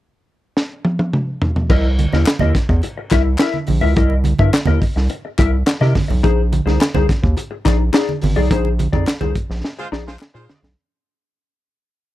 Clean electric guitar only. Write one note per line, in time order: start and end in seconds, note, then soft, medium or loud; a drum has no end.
1.70 1.87 E4 medium
1.70 1.87 A#4 medium
1.70 1.87 D#5 medium
1.98 muted clean electric guitar stroke soft
2.13 2.27 E4 soft
2.13 2.26 A#4 soft
2.13 2.26 D#5 medium
2.28 muted clean electric guitar stroke soft
2.40 2.55 E4 medium
2.40 2.55 A#4 medium
2.40 2.56 D#5 medium
2.56 muted clean electric guitar stroke soft
2.70 muted clean electric guitar stroke medium
2.83 muted clean electric guitar stroke soft
2.98 muted clean electric guitar stroke medium
3.11 3.28 E4 medium
3.11 3.25 A#4 medium
3.11 3.24 E5 medium
3.25 muted clean electric guitar stroke soft
3.39 3.56 E4 medium
3.39 3.56 A#4 medium
3.39 3.57 E5 medium
3.67 muted clean electric guitar stroke soft
3.81 3.95 E4 medium
3.81 3.95 A#4 medium
3.81 3.95 E5 medium
3.96 4.13 E4 medium
3.96 4.13 A#4 medium
3.96 4.14 D#5 medium
4.25 muted clean electric guitar stroke soft
4.39 4.52 E4 soft
4.39 4.53 A#4 medium
4.39 4.52 E5 medium
4.67 4.81 E4 medium
4.67 4.81 A#4 medium
4.67 4.82 D#5 medium
4.82 muted clean electric guitar stroke soft
4.96 muted clean electric guitar stroke soft
5.10 muted clean electric guitar stroke soft
5.25 muted clean electric guitar stroke soft
5.38 5.55 E4 medium
5.38 5.53 A#4 medium
5.38 5.53 E5 medium
5.53 muted clean electric guitar stroke soft
5.66 muted clean electric guitar stroke soft
5.81 5.94 E4 medium
5.81 5.95 A#4 medium
5.81 5.95 D#5 medium
5.95 muted clean electric guitar stroke soft
6.08 muted clean electric guitar stroke medium
6.23 6.40 D#4 medium
6.23 6.41 G#4 medium
6.23 6.41 C5 medium
6.52 muted clean electric guitar stroke soft
6.66 6.80 D#4 medium
6.66 6.80 G#4 medium
6.66 6.79 C5 medium
6.81 muted clean electric guitar stroke soft
6.95 7.07 D#4 medium
6.95 7.08 G#4 medium
6.95 7.08 C5 medium
7.08 muted clean electric guitar stroke soft
7.23 muted clean electric guitar stroke soft
7.37 muted clean electric guitar stroke soft
7.51 muted clean electric guitar stroke soft
7.65 7.82 D#4 medium
7.65 7.79 G#4 medium
7.65 7.79 D5 medium
7.79 muted clean electric guitar stroke soft
7.93 8.10 D#4 medium
7.93 8.11 G#4 medium
7.93 8.11 D5 medium
8.22 muted clean electric guitar stroke soft
8.36 8.49 D#4 medium
8.36 8.50 G#4 medium
8.36 8.50 D5 medium
8.51 8.68 D#4 medium
8.51 8.68 G#4 medium
8.51 8.68 C5 medium
8.79 muted clean electric guitar stroke soft
8.93 9.06 D#4 medium
8.93 9.06 G#4 medium
8.93 9.06 D5 medium
9.07 muted clean electric guitar stroke soft
9.21 9.34 D#4 medium
9.21 9.34 G#4 medium
9.21 9.35 C5 medium
9.51 muted clean electric guitar stroke soft
9.64 muted clean electric guitar stroke soft
9.79 muted clean electric guitar stroke soft
9.92 10.09 D#4 medium
9.92 10.06 G#4 medium
9.92 10.06 D5 medium
10.07 muted clean electric guitar stroke soft
10.19 muted clean electric guitar stroke soft
10.34 10.47 D#4 medium
10.34 10.48 G#4 medium
10.34 10.49 C5 medium
10.49 muted clean electric guitar stroke soft
10.62 muted clean electric guitar stroke medium